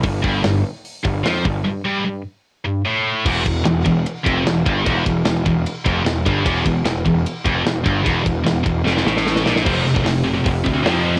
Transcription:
<<
  \new Staff \with { instrumentName = "Distorted electric guitar" } { \clef bass \time 4/4 \key e \phrygian \tempo 4 = 150 g,8 g,8 g,8 r4 g,8 f8 g,8 | g,8 g,8 g,8 r4 g,8 a,4 | e,8 e,8 e,8 e,8 r8 f,8 e,8 g,8 | e,8 e,8 e,8 e,8 r8 f,8 e,8 g,8 |
e,8 e,8 e,8 e,8 r8 f,8 e,8 g,8 | e,8 e,8 e,8 e,8 f,8 a,4 ais,8 | <f, c f>8 <f, c>16 <f, c>16 <f, c>8 <f, c>16 <f, c>16 <f, c>8 <f, c>16 <f, c>16 <f, c f>8 <f, c f>16 <f, c>16 | }
  \new Staff \with { instrumentName = "Picked electric bass" } { \clef bass \time 4/4 \key e \phrygian g,,8 g,,8 g,,8 r4 g,,8 f,8 g,,8 | r1 | e,,8 e,,8 e,,8 e,,8 r8 f,,8 e,,8 g,,8 | e,,8 e,,8 e,,8 e,,8 r8 f,,8 e,,8 g,,8 |
e,,8 e,,8 e,,8 e,,8 r8 f,,8 e,,8 g,,8 | e,,8 e,,8 e,,8 e,,8 f,,8 a,,4 ais,,8 | f,,8 f,,8 f,,4 f,,8 d,8 f,4 | }
  \new DrumStaff \with { instrumentName = "Drums" } \drummode { \time 4/4 <hho bd>8 bd8 <hho sn>4 hho8 bd8 <hho sn>8 bd8 | r4 r4 r4 r4 | <cymc bd>8 <bd cymr>8 <cymr sn>8 <bd cymr>8 cymr8 <bd cymr>8 <cymr sn>8 <bd cymr>8 | <bd cymr>8 <bd cymr>8 <cymr sn>8 <bd cymr>8 cymr8 <bd cymr>8 <cymr sn>8 <bd cymr>8 |
<bd cymr>8 <bd cymr>8 <cymr sn>8 <bd cymr>8 cymr8 <bd cymr>8 <cymr sn>8 <bd cymr>8 | <bd cymr>8 <bd cymr>8 <cymr sn>8 <bd cymr>8 sn16 sn16 sn16 sn16 sn16 sn16 sn16 sn16 | <cymc bd>8 sn16 bd16 <hho sn>4 <hho bd>8 bd8 <hho sn>8. sn16 | }
>>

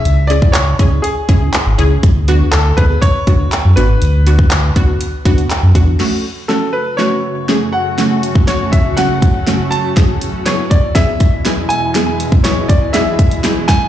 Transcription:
<<
  \new Staff \with { instrumentName = "Grand piano" } { \time 4/4 \key fis \minor \tempo 4 = 121 e''8 d''8 cis''4 gis'4. r8 | r4 a'8 b'8 cis''4. b'8~ | b'2. r4 | r4 a'8 b'8 cis''4. fis''8 |
r4 cis''8 e''8 fis''4. a''8 | r4 cis''8 d''8 e''4. gis''8 | r4 cis''8 d''8 e''4. gis''8 | }
  \new Staff \with { instrumentName = "Synth stab" } { \time 4/4 \key fis \minor r8 <cis' e' gis'>8 r8 <cis' e' gis'>8 r8 <cis' e' gis'>8 r8 <cis' e' gis'>8 | r8 <b d' fis'>8 r8 <b d' gis'>8 r8 <b d' fis'>8 r8 <b d' fis'>8 | r8 <b d' fis'>8 r8 <b d' fis'>8 r8 <b d' fis'>8 r8 <b d' fis'>8 | <a cis' fis'>8 r8 <a cis' fis'>8 r8 <a cis' fis'>8 r8 <a cis' gis'>8 r8 |
<a cis' fis'>8 r8 <a cis' fis'>8 r8 <a cis' fis'>8 r8 <a cis' fis'>8 r8 | <b e' gis'>8 r8 <b e' gis'>8 r8 <b e' gis'>8 r8 <b e' gis'>8 r8 | <b e' gis'>8 r8 <b e' gis'>8 r8 <b e' gis'>8 r8 <b e' gis'>8 r8 | }
  \new Staff \with { instrumentName = "Ambient pad" } { \clef bass \time 4/4 \key fis \minor r1 | r1 | r1 | <fis, cis a fis'>1~ |
<fis, cis a fis'>1 | <e, b, gis e'>1~ | <e, b, gis e'>1 | }
  \new Staff \with { instrumentName = "Sub bass" } { \clef bass \time 4/4 \key fis \minor cis,4 cis,8 cis,8 r8 cis,8 r16 gis,,16 cis,8 | d,4 d,8 d,8 r8 d,8 r16 fis,16 gis,,8 | d,4 d,8 d,8 r8 d,8 r16 fis,16 e,8 | r1 |
r1 | r1 | r1 | }
  \new DrumStaff \with { instrumentName = "Drums" } \drummode { \time 4/4 hh8 hh16 bd16 <hc hh>8 <hh bd>8 hh8 <hh bd>8 <hc hh>8 hh8 | <hh bd>8 hh8 <hc hh>8 <hh bd>8 <hh bd>8 <hh bd>8 <hc hh>8 hh8 | hh8 hh16 bd16 <hc hh>8 <hh bd>8 hh8 <hh bd>16 hh16 <hc hh>8 <hh bd>8 | <cymc sn>4 sn4 sn4 sn4 |
<hh sn>8 hh16 bd16 <hh sn>8 <hh bd>8 <hh sn>8 <hh bd>8 <hh sn>8 hh8 | <hh bd sn>8 hh8 <hh sn>8 <hh bd>8 <hh bd sn>8 <hh bd>8 <hh sn>8 hh8 | <hh sn>8 hh16 bd16 <hh sn>8 <hh bd>8 <hh sn>8 <hh bd>16 hh16 <hh sn>8 <hh bd sn>8 | }
>>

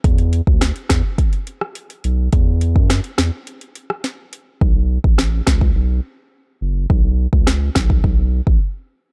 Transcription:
<<
  \new Staff \with { instrumentName = "Sub bass" } { \clef bass \time 4/4 \key b \minor \tempo 4 = 105 e,8. d,8 r16 e,16 r4. r16 b,,8 | e,8. fis,8 r16 e,16 r2 r16 | b,,8. a,,8. cis,8 b,,8 r4 fis,,8 | b,,8. cis,8. b,,8 b,,8. a,,16 r4 | }
  \new DrumStaff \with { instrumentName = "Drums" } \drummode { \time 4/4 <hh bd>16 hh16 hh16 bd16 <hh ss sn>16 hh16 <hh bd ss sn>8 <hh bd>16 hh16 hh16 ss16 hh16 hh16 hh8 | <hh bd>8 hh16 bd16 <hh ss sn>16 hh16 <hh ss sn>8 hh16 hh16 hh16 ss16 <hh sn>8 hh8 | bd8. bd16 <ss sn>8 <bd ss sn>16 bd16 r4 r4 | bd8. bd16 <ss sn>8 <bd ss sn>16 bd16 bd8. bd16 r4 | }
>>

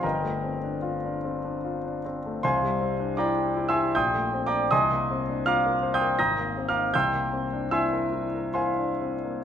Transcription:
\new Staff \with { instrumentName = "Grand piano" } { \time 3/4 \key c \minor \tempo 4 = 78 << { <bes' ees'' g'' bes''>2~ <bes' ees'' g'' bes''>8 r8 | <c'' f'' aes'' c'''>4 \tuplet 3/2 { <d'' g'' bes'' d'''>4 <e'' aes'' c''' e'''>8 <g'' c''' ees''' g'''>4 <d'' g'' bes'' d'''>8 } | <ees'' aes'' c''' ees'''>4 \tuplet 3/2 { <f'' bes'' d''' f'''>4 <g'' c''' ees''' g'''>8 <bes'' ees''' g''' bes'''>4 <f'' bes'' d''' f'''>8 } | <g'' c''' e''' g'''>4 <e'' aes'' c''' e'''>4 <c'' f'' aes'' c'''>4 | } \\ { g,,16 a16 c'16 d'16 f'16 d'16 c'16 d'16 f'16 d'16 c'16 a16 | c,16 g16 c'16 d'16 e'16 g'16 e'16 g'16 bes,,16 a16 c'16 d'16 | c,16 bes16 c'16 d'16 f'16 bes'16 c''16 bes'16 aes,,16 bes16 c'16 ees'16 | c,16 bes16 c'16 d'16 e'16 bes'16 e'16 bes'16 e'16 d'16 c'16 bes16 | } >> }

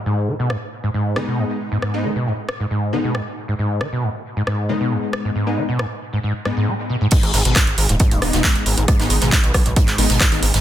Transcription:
<<
  \new Staff \with { instrumentName = "Synth stab" } { \time 4/4 \key gis \minor \tempo 4 = 136 r2 r8 <gis b dis'>4.~ | <gis b dis'>16 <gis b dis'>8 r4. r16 <gis b dis'>8 r4 | r2 r8 <gis b dis'>4.~ | <gis b dis'>16 <gis b dis'>8 r4. r16 <gis b dis'>8 r4 |
r2 r8 <gis b dis'>4.~ | <gis b dis'>16 <gis b dis'>8 r4. r16 <gis b dis'>16 r8 <gis b dis'>16 r8 | }
  \new Staff \with { instrumentName = "Acid bass" } { \clef bass \time 4/4 \key gis \minor gis,8 dis16 b,16 gis,16 r8 gis,16 gis,8 dis16 b,16 gis,16 r8 gis,16 | gis,8 dis16 b,16 gis,16 r8 gis,16 gis,8 dis16 b,16 gis,16 r8 gis,16 | gis,8 dis16 b,16 gis,16 r8 gis,16 gis,8 dis16 b,16 gis,16 r8 gis,16 | gis,8 dis16 b,16 gis,16 r8 gis,16 gis,16 r16 gis,16 gis,16 gis16 r16 b,16 gis,16 |
gis,8 dis16 b,16 gis,16 r8 gis,16 gis,8 dis16 b,16 gis,16 r8 gis,16 | gis,8 dis16 b,16 gis,16 r8 gis,16 gis,8 dis16 b,16 gis,16 r8 gis,16 | }
  \new Staff \with { instrumentName = "Analog synth bass" } { \clef bass \time 4/4 \key gis \minor r1 | r1 | r1 | r1 |
r16 gis,,16 gis,,16 gis,,16 r16 gis,,16 gis,,16 dis,,16 r16 dis,,16 dis,,16 dis,,16 r16 gis,,16 gis,,16 gis,,16 | r16 gis,,16 gis,,16 gis,,16 r16 b,,16 b,,16 b,,16 r16 gis,,16 gis,,16 gis,,16 r16 gis,,16 gis,,16 gis,,16 | }
  \new DrumStaff \with { instrumentName = "Drums" } \drummode { \time 4/4 r4 ss4 r8 ss8 r4 | ss4 r8 ss8 r4 ss4 | r8 ss8 r4 ss4 r8 ss8 | r4 ss4 r8 ss8 r4 |
<cymc hh bd>16 hh16 <hh hho sn>16 hh16 <hc hh bd ss sn>16 hh16 <hh hho>16 hh16 <hh bd>16 hh16 <hh hho ss>16 <hh sn>16 <hc hh bd sn>16 hh16 <hh hho>16 hh16 | <hh bd ss>16 <hh sn>16 <hh hho>16 <hh sn>16 <hc hh bd sn>16 hh16 <hh hho bd ss>16 hh16 <hh bd>16 <hc hh>16 hho16 <hh sn>16 <hc hh bd ss sn>16 <hh sn>16 <hh hho>16 <hh sn>16 | }
>>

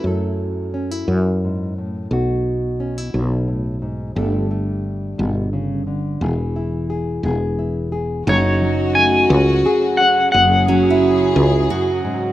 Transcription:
<<
  \new Staff \with { instrumentName = "Clean electric guitar" } { \time 6/8 \key e \major \tempo 4. = 58 r2. | r2. | r2. | r2. |
cis''4 gis''4. fis''8 | fis''2~ fis''8 r8 | }
  \new Staff \with { instrumentName = "Steel-string acoustic guitar" } { \time 6/8 \key e \major r2. | r2. | r2. | r2. |
dis'4. r4. | r8 cis'16 e'4~ e'16 fis'4 | }
  \new Staff \with { instrumentName = "String section" } { \time 6/8 \key e \major << { r2. | r2. | r2. | r2. |
fis'2. | gis'2. | } \\ { r2. | r2. | r2. | r2. |
<cis fis>2.~ | <cis fis>2. | } >> }
  \new Staff \with { instrumentName = "Nylon-string guitar" } { \time 6/8 \key e \major << { <fis a e' a'>4 cis'16 e'4.~ e'16 | fis'4 cis'16 e'4.~ e'16 | <g a d' a'>8 a2~ a8 | gis'8 e'8 gis'8 gis'8 e'8 gis'8 |
r4 a8 cis'8 gis'8 cis'8~ | cis'2. | } \\ { fis,4. fis,8 gis,8 a,8 | b,4. b,8 a,8 gis,8 | g,4. b,8 cis8 d8 | e4. b4. |
fis,8 fis2~ fis8 | fis,8 fis4. fis,8 gis,8 | } >> }
  \new Staff \with { instrumentName = "Fretless electric bass" } { \clef bass \time 6/8 \key e \major fis,4. fis,4. | b,,4. b,,4. | g,,4. g,,4. | e,,4. e,,4. |
fis,,4. cis,8 r4 | fis,,4. cis,8 r4 | }
>>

